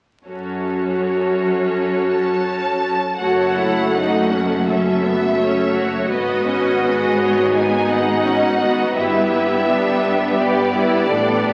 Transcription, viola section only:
0.27 2.96 C#4 soft
0.27 2.96 F#4 soft
3.20 4.62 A3 soft
3.20 3.54 F#4 soft
3.58 3.94 E4 soft
3.95 4.30 D#4 soft
4.31 4.66 C#4 soft
4.67 5.03 C#4 soft
5.03 5.39 B3 soft
5.38 6.10 A3 soft
5.38 5.73 C#4 soft
5.74 6.09 F#4 soft
6.11 6.46 B3 soft
6.11 7.51 F#4 soft
6.47 6.82 C#4 soft
6.83 8.26 B3 soft
7.54 8.97 D#4 soft
8.25 8.61 C#4 soft
8.61 8.96 B3 soft
8.97 11.53 B3 soft
8.97 9.68 E4 soft
9.69 10.40 D4 soft
10.39 10.74 G4 medium
10.75 11.10 E4 soft
11.09 11.53 D4 soft

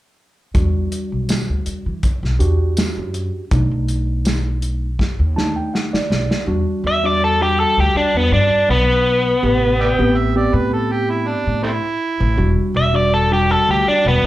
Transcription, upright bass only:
0.55 0.86 E2 medium
1.12 1.43 B1 medium
1.49 1.64 D2 medium
1.66 muted upright bass stroke soft
1.86 2.17 E3 medium
2.23 2.38 B1 medium
2.40 2.88 E2 medium
2.97 3.28 F#2 medium
3.51 3.68 B1 medium
3.71 4.97 B1 medium
5.19 5.50 D#2 medium
5.93 muted upright bass stroke soft
6.10 6.27 B1 medium
6.47 6.63 E2 medium
6.84 7.63 E2 medium
7.77 7.92 D2 medium
7.95 muted upright bass stroke soft
8.14 8.29 E2 medium
8.32 8.48 G2 medium
8.69 9.31 B1 medium
9.43 9.91 A1 medium
9.99 10.45 A1 medium
10.53 11.32 A2 medium
11.47 11.78 A2 medium
12.20 12.35 A1 medium
12.38 12.54 E1 medium
12.74 13.54 E1 medium
13.68 13.82 D2 medium
13.85 muted upright bass stroke soft
14.05 14.19 E1 medium
14.23 14.27 G1 medium

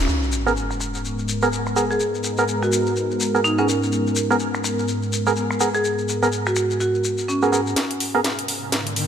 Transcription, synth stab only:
0.47 0.52 B3 medium
0.47 0.52 G#4 medium
0.47 0.52 A#4 loud
1.43 1.48 B3 medium
1.43 1.48 G#4 medium
1.43 1.48 A#4 loud
1.76 1.85 B3 medium
1.76 1.85 G#4 medium
1.76 1.85 A#4 medium
2.39 2.44 B3 medium
2.39 2.44 G#4 medium
2.39 2.44 A#4 loud
3.35 3.40 B3 medium
3.35 3.40 G#4 medium
3.35 3.40 A#4 medium
3.58 3.68 B3 medium
3.58 3.68 G#4 medium
3.58 3.68 A#4 medium
4.30 4.36 B3 loud
4.30 4.36 G#4 medium
4.30 4.36 A#4 loud
5.27 5.32 B3 medium
5.27 5.32 G#4 medium
5.27 5.32 A#4 loud
5.60 5.69 B3 medium
5.60 5.69 G#4 medium
5.60 5.69 A#4 medium
6.23 6.28 B3 medium
6.23 6.28 G#4 medium
6.23 6.28 A#4 loud
7.43 7.51 B3 medium
7.43 7.51 G#4 medium
7.43 7.51 A#4 medium
7.52 7.61 B3 medium
7.52 7.61 G#4 medium
7.52 7.61 A#4 loud
8.15 8.20 B3 loud
8.15 8.20 G#4 medium
8.15 8.20 A#4 loud

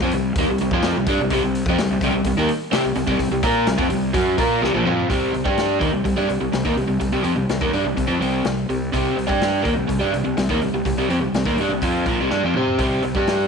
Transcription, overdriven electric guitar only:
0.02 0.13 F3 loud
0.02 0.13 C4 loud
0.14 0.33 C3 medium
0.14 0.33 G3 medium
0.39 0.49 D#3 medium
0.39 0.49 A#3 medium
0.50 0.60 C3 medium
0.50 0.61 G3 medium
0.62 0.73 C3 medium
0.62 0.73 G3 medium
0.73 0.96 F3 medium
0.73 0.96 C4 loud
0.73 0.96 F4 loud
0.97 1.08 C3 medium
0.97 1.07 G3 medium
1.08 1.19 G3 medium
1.08 1.19 D4 medium
1.21 1.30 C3 medium
1.21 1.32 G3 medium
1.31 1.42 C3 loud
1.31 1.43 G3 loud
1.44 1.62 C3 medium
1.44 1.63 G3 medium
1.69 1.79 F3 medium
1.69 1.79 C4 loud
1.80 1.90 C3 medium
1.80 1.91 G3 medium
1.92 2.02 C3 medium
1.92 2.03 G3 medium
2.03 2.14 C3 medium
2.03 2.14 G3 medium
2.15 2.25 C3 medium
2.15 2.26 G3 medium
2.26 2.37 C3 medium
2.26 2.38 G3 medium
2.37 2.49 D#3 medium
2.37 2.49 A#3 medium
2.72 2.84 C4 loud
2.72 2.84 G4 loud
2.85 2.95 C3 medium
2.85 2.96 G3 medium
2.96 3.06 C3 medium
2.96 3.07 G3 medium
3.07 3.18 C3 medium
3.07 3.18 G3 loud
3.19 3.31 C3 medium
3.19 3.31 G3 medium
3.32 3.44 C3 medium
3.32 3.43 G3 medium
3.43 3.67 A#3 medium
3.43 3.67 F4 medium
3.43 3.67 A#4 medium
3.67 3.77 C3 medium
3.67 3.78 G3 medium
3.78 3.89 F3 medium
3.78 3.90 C4 loud
3.89 4.09 C3 medium
3.89 4.10 G3 medium
4.14 4.38 F#3 medium
4.14 4.38 C#4 medium
4.14 4.38 F#4 loud
4.38 4.62 A#3 medium
4.38 4.62 F4 medium
4.38 4.62 A#4 loud
4.62 4.73 C3 medium
4.62 4.74 G3 medium
4.74 4.85 A#2 medium
4.74 4.85 F3 medium
4.86 5.09 F3 medium
4.86 5.09 C4 medium
4.86 5.10 F4 medium
5.09 5.33 C3 medium
5.09 5.33 G3 medium
5.09 5.34 C4 medium
5.34 5.46 C3 medium
5.34 5.44 G3 medium
5.45 5.80 G3 medium
5.45 5.81 D4 medium
5.45 5.81 G4 medium
5.80 5.92 D#3 medium
5.80 5.93 A#3 medium
5.93 6.04 C3 medium
5.93 6.04 G3 medium
6.05 6.17 C3 medium
6.05 6.16 G3 medium
6.17 6.28 G3 medium
6.17 6.29 D4 medium
6.28 6.40 C3 medium
6.28 6.40 G3 medium
6.41 6.51 C3 medium
6.41 6.52 G3 medium
6.53 6.65 C3 medium
6.53 6.66 G3 medium
6.65 6.76 D#3 medium
6.65 6.77 A#3 loud
6.77 6.86 C3 medium
6.77 6.87 G3 medium
6.88 6.99 C3 medium
6.88 6.99 G3 medium
7.00 7.11 C3 medium
7.00 7.12 G3 medium
7.12 7.22 C3 medium
7.12 7.24 G3 medium
7.22 7.35 F3 medium
7.22 7.36 C4 medium
7.36 7.49 C3 medium
7.36 7.49 G3 medium
7.50 7.61 C3 medium
7.50 7.62 G3 medium
7.61 7.73 D#3 medium
7.61 7.73 A#3 medium
7.73 7.84 G3 medium
7.73 7.85 D4 medium
7.85 7.96 C3 medium
7.85 7.96 G3 medium
7.97 8.07 C3 medium
7.97 8.07 G3 medium
8.07 8.19 F3 medium
8.07 8.19 C4 medium
8.19 8.44 C3 medium
8.19 8.44 G3 medium
8.19 8.44 C4 medium
8.45 8.65 C3 medium
8.45 8.65 G3 medium
8.70 8.89 C3 medium
8.70 8.89 G3 medium
8.93 9.16 C3 medium
8.93 9.16 G3 medium
8.93 9.17 C4 loud
9.17 9.30 C3 medium
9.17 9.26 G3 medium
9.27 9.63 G3 medium
9.27 9.64 D4 medium
9.27 9.65 G4 medium
9.63 9.75 D#3 medium
9.63 9.76 A#3 medium
9.76 9.87 C3 medium
9.76 9.87 G3 medium
9.88 10.01 C3 medium
9.88 9.99 G3 medium
10.00 10.11 G3 medium
10.00 10.13 D4 medium
10.12 10.23 C3 medium
10.12 10.24 G3 medium
10.24 10.36 C3 medium
10.24 10.36 G3 medium
10.37 10.49 C3 medium
10.37 10.50 G3 medium
10.49 10.61 D#3 medium
10.49 10.61 A#3 medium
10.62 10.73 C3 soft
10.62 10.73 G3 medium
10.74 10.84 C3 medium
10.74 10.85 G3 medium
10.85 10.97 C3 medium
10.85 10.97 G3 medium
10.98 11.08 C3 medium
10.98 11.10 G3 medium
11.09 11.20 F3 medium
11.09 11.21 C4 medium
11.20 11.34 C3 medium
11.20 11.34 G3 medium
11.35 11.46 C3 medium
11.35 11.46 G3 medium
11.46 11.58 D#3 medium
11.46 11.58 A#3 medium
11.60 11.70 G3 medium
11.60 11.71 D4 loud
11.71 11.82 C3 medium
11.71 11.82 G3 medium
11.82 12.06 F3 medium
11.82 12.06 C4 medium
11.82 12.07 F4 medium
12.06 12.18 A#2 medium
12.06 12.19 F3 medium
12.20 12.31 C3 medium
12.20 12.29 G3 medium
12.30 12.42 G3 medium
12.30 12.42 D4 medium
12.43 12.55 F3 medium
12.43 12.54 C4 medium
12.56 12.79 C4 medium
12.56 12.79 G4 medium
12.56 12.80 C5 medium
12.78 13.02 C3 medium
12.78 13.03 G3 medium
12.78 13.03 C4 loud
13.04 13.16 C3 medium
13.04 13.15 G3 medium
13.16 13.47 G3 medium
13.16 13.47 D4 medium
13.16 13.47 G4 medium

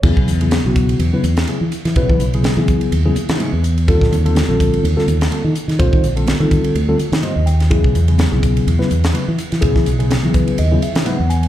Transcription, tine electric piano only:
0.03 0.31 C#3 medium
0.03 0.31 F#3 medium
0.03 0.31 B3 medium
0.03 0.31 E4 medium
0.03 0.31 G#4 medium
0.41 0.59 C#3 medium
0.41 0.59 F#3 medium
0.41 0.59 B3 medium
0.41 0.59 E4 medium
0.41 0.59 G#4 medium
0.66 1.01 C#3 medium
0.66 1.01 F#3 medium
0.66 1.01 B3 medium
0.66 1.01 E4 medium
0.66 1.01 F#4 medium
1.13 1.21 C#3 medium
1.13 1.21 F#3 medium
1.13 1.21 B3 medium
1.13 1.21 E4 medium
1.13 1.22 B4 medium
1.48 1.58 C#3 medium
1.48 1.58 F#3 medium
1.48 1.58 B3 medium
1.48 1.58 E4 medium
1.48 1.58 G#4 medium
1.63 1.67 E4 soft
1.63 1.67 G#4 soft
1.87 1.91 E4 soft
1.87 1.91 B4 soft
1.97 2.24 C#3 medium
1.97 2.24 F#3 medium
1.97 2.24 B3 medium
1.97 2.24 E4 medium
1.97 2.24 B4 loud
2.34 2.51 C#3 medium
2.34 2.51 F#3 medium
2.34 2.51 B3 medium
2.34 2.51 E4 medium
2.34 2.51 G#4 medium
2.58 2.93 C#3 medium
2.58 2.93 F#3 medium
2.58 2.93 B3 medium
2.58 2.93 E4 medium
2.58 2.93 G#4 medium
3.06 3.13 C#3 loud
3.06 3.13 F#3 medium
3.06 3.14 B3 medium
3.06 3.13 E4 medium
3.06 3.13 G#4 loud
3.40 3.50 C#3 medium
3.40 3.50 F#3 medium
3.40 3.50 B3 medium
3.40 3.50 E4 medium
3.40 3.50 G#4 medium
3.53 3.58 E4 soft
3.53 3.59 G#4 soft
3.77 3.82 E4 soft
3.77 3.82 B4 soft
3.88 4.16 D3 medium
3.88 4.16 G3 medium
3.88 4.16 C4 medium
3.88 4.16 F4 medium
3.88 4.16 A4 loud
4.26 4.43 D3 medium
4.26 4.43 G3 medium
4.26 4.43 C4 medium
4.26 4.43 F4 medium
4.26 4.43 A4 medium
4.49 4.84 D3 medium
4.49 4.84 G3 medium
4.49 4.84 C4 medium
4.49 4.84 F4 medium
4.49 4.84 A4 medium
4.96 5.05 D3 medium
4.96 5.05 G3 medium
4.96 5.05 C4 medium
4.96 5.05 F4 medium
4.96 5.05 A4 loud
5.08 5.14 F4 soft
5.08 5.14 A4 soft
5.31 5.42 D3 medium
5.31 5.41 G3 medium
5.31 5.42 C4 medium
5.31 5.41 F4 medium
5.31 5.42 A4 medium
5.45 5.50 F4 soft
5.45 5.50 A4 soft
5.68 5.74 F4 soft
5.68 5.74 A4 soft
5.79 6.07 D3 loud
5.79 6.07 G3 medium
5.79 6.07 C4 medium
5.79 6.07 F4 medium
5.79 6.07 C5 loud
6.16 6.34 D3 medium
6.16 6.34 G3 medium
6.16 6.34 C4 medium
6.16 6.34 F4 medium
6.16 6.34 A4 medium
6.40 6.75 D3 medium
6.40 6.76 G3 medium
6.40 6.76 C4 medium
6.40 6.76 F4 medium
6.40 6.76 A4 medium
6.89 6.97 D3 medium
6.89 6.97 G3 medium
6.89 6.97 C4 medium
6.89 6.97 F4 medium
6.89 6.97 A4 loud
6.99 7.06 F4 soft
6.99 7.05 A#4 soft
7.23 7.33 D3 medium
7.23 7.33 G3 medium
7.23 7.33 C4 medium
7.23 7.33 F4 medium
7.23 7.33 C5 medium
7.23 7.45 D#5 medium
7.36 7.41 F4 soft
7.36 7.41 A#4 soft
7.46 7.69 G5 medium
7.61 7.66 F4 soft
7.61 7.66 C5 soft
7.70 7.98 C#3 medium
7.70 7.98 F#3 medium
7.70 7.98 B3 medium
7.70 7.98 E4 medium
7.70 7.98 G#4 loud
8.08 8.26 C#3 medium
8.08 8.26 F#3 medium
8.08 8.26 B3 medium
8.08 8.26 E4 medium
8.08 8.26 G#4 medium
8.32 8.67 C#3 medium
8.32 8.67 F#3 medium
8.32 8.67 B3 medium
8.32 8.67 E4 medium
8.32 8.67 G#4 medium
8.79 8.88 C#3 medium
8.79 8.88 F#3 medium
8.79 8.88 B3 medium
8.79 8.88 E4 medium
8.79 8.88 B4 loud
9.14 9.24 C#3 medium
9.14 9.24 F#3 medium
9.14 9.24 B3 medium
9.14 9.24 E4 medium
9.14 9.24 B4 medium
9.28 9.33 E4 soft
9.28 9.33 F#4 soft
9.51 9.56 E4 soft
9.51 9.56 B4 soft
9.61 9.89 C#3 loud
9.61 9.89 F#3 medium
9.61 9.90 B3 medium
9.61 9.90 E4 medium
9.61 9.90 G#4 loud
9.99 10.17 C#3 medium
9.99 10.17 F#3 medium
9.99 10.17 B3 medium
9.99 10.17 E4 medium
9.99 10.17 G#4 medium
10.23 10.58 C#3 medium
10.23 10.58 F#3 medium
10.23 10.58 B3 medium
10.23 10.59 E4 medium
10.23 10.58 G#4 medium
10.34 10.57 B4 medium
10.59 10.81 D#5 medium
10.72 10.80 C#3 medium
10.72 10.80 F#3 medium
10.72 10.80 B3 medium
10.72 10.80 E4 medium
10.72 10.80 G#4 medium
10.82 10.89 E4 soft
10.82 10.89 G#4 soft
10.82 11.05 E5 medium
11.06 11.16 C#3 medium
11.06 11.17 F#3 medium
11.06 11.17 B3 medium
11.06 11.16 E4 medium
11.06 11.17 B4 medium
11.06 11.28 F#5 medium
11.19 11.24 E4 soft
11.19 11.25 G#4 soft
11.30 11.48 G#5 medium
11.44 11.48 E4 soft
11.44 11.48 B4 soft

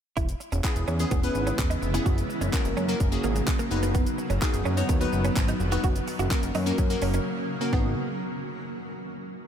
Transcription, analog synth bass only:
0.17 0.34 E1 loud
0.52 0.61 E1 medium
0.76 0.85 E1 medium
0.88 1.05 E2 loud
1.11 1.29 E1 loud
1.35 1.52 G#1 medium
1.59 1.76 E1 medium
1.82 2.00 F1 medium
2.06 2.23 F#1 loud
2.41 2.50 F#1 loud
2.65 2.74 F#1 loud
2.77 2.94 F#2 medium
3.01 3.18 F#1 medium
3.24 3.42 G#1 loud
3.71 4.06 F#1 medium
4.30 4.39 F#1 loud
4.54 4.62 F#1 medium
4.66 4.83 F#2 loud
4.89 5.07 D#2 loud
5.13 5.30 F#1 medium
5.37 5.54 G#1 loud
5.60 5.78 F1 medium
5.84 6.01 F#1 loud
6.19 6.28 F#1 loud
6.43 6.52 F#1 loud
6.55 6.72 F#2 loud
6.78 6.96 F#2 loud
7.02 7.19 F#1 medium
7.73 7.95 G#1 loud

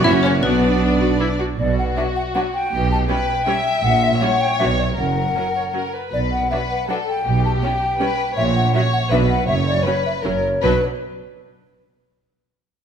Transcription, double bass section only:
0.05 0.43 F#1 medium
0.43 1.40 B1 medium
1.59 1.91 B1 medium
2.72 3.03 B1 medium
3.84 4.15 A#1 medium
4.59 4.91 B1 medium
4.97 5.29 F#1 soft
6.12 6.44 B1 soft
7.26 7.57 B1 medium
8.38 8.68 A#1 medium
9.11 9.42 B1 medium
9.48 9.80 F#1 medium
10.24 10.56 F#1 soft
10.63 10.84 B1 medium

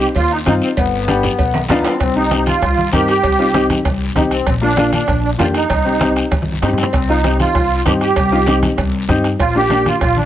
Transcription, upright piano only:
0.46 0.68 C4 medium
0.46 0.68 D#4 medium
0.46 0.68 F4 medium
1.08 1.29 B3 medium
1.08 1.29 D4 medium
1.08 1.30 G4 medium
1.70 1.91 B3 medium
1.70 1.91 D4 medium
1.70 1.91 F4 loud
2.16 2.21 C4 medium
2.16 2.21 D#4 medium
2.16 2.21 G4 medium
2.31 2.53 C4 medium
2.31 2.53 D#4 medium
2.31 2.53 G4 medium
2.92 3.09 C4 medium
2.92 3.09 D#4 medium
2.92 3.09 A#4 medium
3.39 3.44 C4 medium
3.39 3.44 D#4 medium
3.39 3.44 F4 medium
3.54 3.76 C4 medium
3.54 3.76 D#4 medium
3.54 3.76 G4 medium
4.15 4.32 C4 medium
4.15 4.32 D#4 medium
4.15 4.32 G4 medium
4.61 4.67 A#3 medium
4.61 4.67 D4 medium
4.61 4.68 F4 medium
4.77 4.99 A#3 medium
4.77 4.99 D4 medium
4.77 4.99 F4 medium
5.39 5.55 A#3 medium
5.39 5.55 D4 medium
5.39 5.56 G4 medium
5.85 5.90 C4 medium
5.85 5.91 D#4 medium
5.85 5.91 G4 medium
6.00 6.22 C4 medium
6.00 6.22 D#4 medium
6.00 6.22 G4 medium
6.62 6.78 C4 medium
6.62 6.79 D#4 medium
6.62 6.79 G4 medium
7.09 7.14 C4 medium
7.09 7.14 D#4 medium
7.09 7.14 F4 medium
7.24 7.46 C4 medium
7.24 7.46 D#4 medium
7.24 7.46 G4 medium
7.85 8.02 C4 medium
7.85 8.02 D#4 medium
7.85 8.02 G4 medium
8.31 8.37 C4 medium
8.31 8.37 D#4 medium
8.31 8.37 F4 medium
8.46 8.68 C4 medium
8.46 8.69 D#4 medium
8.46 8.69 G4 medium
9.09 9.25 C4 medium
9.09 9.25 D#4 medium
9.09 9.25 G4 loud
9.55 9.60 A#3 medium
9.55 9.60 D4 medium
9.55 9.61 F4 medium
9.70 9.92 A#3 medium
9.70 9.92 D4 medium
9.70 9.92 G4 medium

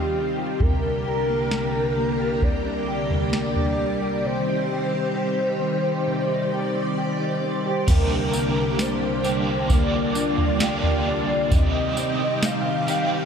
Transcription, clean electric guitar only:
0.00 0.59 C3 medium
0.00 0.14 C4 medium
0.00 0.70 D#4 medium
0.00 0.38 G4 medium
0.15 0.70 C4 soft
0.38 1.05 G4 medium
0.61 2.41 C3 medium
0.83 1.73 D4 medium
1.06 1.51 G4 soft
1.29 1.96 A#3 medium
1.51 2.19 G4 medium
1.74 2.64 D4 medium
1.97 3.10 A#3 medium
2.19 2.88 G4 medium
2.42 4.24 C3 medium
2.65 3.55 D4 medium
2.88 3.33 G4 medium
3.11 3.78 A#3 medium
3.34 4.01 G4 medium
3.56 4.33 D4 soft
3.79 4.33 A#3 soft
4.02 4.70 G4 medium
4.25 6.05 C3 medium
4.47 5.37 D#4 medium
4.70 5.15 G4 soft
4.93 5.60 C4 soft
5.16 5.83 G4 medium
5.38 6.28 D#4 soft
5.61 6.74 C4 medium
5.84 6.52 G4 medium
6.06 7.88 C3 medium
6.29 7.19 D#4 medium
6.52 6.97 G4 medium
6.75 7.42 C4 medium
6.98 7.65 G4 medium
7.21 7.97 D#4 soft
7.43 7.97 C4 soft
7.66 9.24 G4 medium
7.89 11.51 C3 medium
8.34 9.69 A#3 medium
8.79 10.14 D4 medium
9.25 10.61 G4 medium
9.70 11.61 A#3 medium
10.16 11.05 D4 medium
10.61 12.88 G4 medium
11.06 11.61 D4 medium
11.52 13.25 C3 medium
11.97 13.25 C4 medium
12.43 13.25 D#4 medium
12.88 13.25 G4 medium

